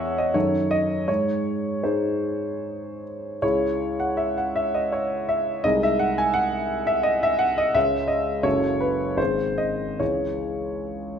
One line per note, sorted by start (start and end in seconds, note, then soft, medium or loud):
0.00 0.30 E2 medium
0.00 0.30 E3 soft
0.00 0.30 C#4 soft
0.00 0.30 G#4 soft
0.00 0.18 D#5 medium
0.00 0.37 E5 medium
0.00 0.37 F#5 medium
0.18 0.36 D#5 medium
0.34 1.06 F#2 soft
0.34 1.06 D#3 soft
0.34 1.06 D#4 soft
0.34 1.06 A4 soft
0.34 0.71 C#5 medium
0.71 1.08 D#5 medium
1.07 1.82 G#2 soft
1.07 1.82 G#3 soft
1.07 1.82 D#4 soft
1.07 1.82 G#4 soft
1.07 1.85 C#5 medium
1.83 3.38 G#2 soft
1.83 3.38 G#3 soft
1.83 3.38 D#4 soft
1.83 3.38 G#4 soft
1.83 3.02 C5 soft
3.42 5.60 C#2 soft
3.42 5.60 G#3 soft
3.42 5.60 E4 soft
3.42 5.60 G#4 soft
3.42 3.99 C#5 medium
4.00 4.18 F#5 medium
4.17 4.36 E5 medium
4.38 4.56 F#5 medium
4.56 4.74 E5 medium
4.74 4.93 D#5 medium
4.92 5.29 C#5 medium
5.29 5.64 E5 medium
5.64 7.72 C2 soft
5.64 7.72 G#3 soft
5.64 7.72 D#4 soft
5.64 7.72 G#4 soft
5.64 5.82 D#5 medium
5.83 6.00 E5 medium
5.99 6.17 F#5 medium
6.18 6.35 G#5 medium
6.34 6.87 F#5 medium
6.87 7.05 E5 medium
7.03 7.22 D#5 medium
7.23 7.41 E5 medium
7.39 7.57 F#5 medium
7.58 7.75 D#5 medium
7.74 8.43 C#2 medium
7.74 8.43 G#3 soft
7.74 8.42 C#4 soft
7.74 8.43 G#4 soft
7.74 8.09 E5 medium
8.08 8.44 D#5 medium
8.43 9.16 F#1 medium
8.43 9.16 F#3 soft
8.43 9.16 C#4 soft
8.43 9.17 A4 soft
8.43 8.81 C#5 medium
8.81 9.19 B4 medium
9.17 9.97 G#1 soft
9.17 9.97 D#3 soft
9.17 9.97 G#3 soft
9.17 9.98 G#4 soft
9.17 9.58 C5 medium
9.58 10.00 D#5 medium
10.00 11.19 C#2 soft
10.00 11.19 E3 soft
10.00 11.19 G#3 soft
10.00 11.19 G#4 soft
10.00 11.19 C#5 medium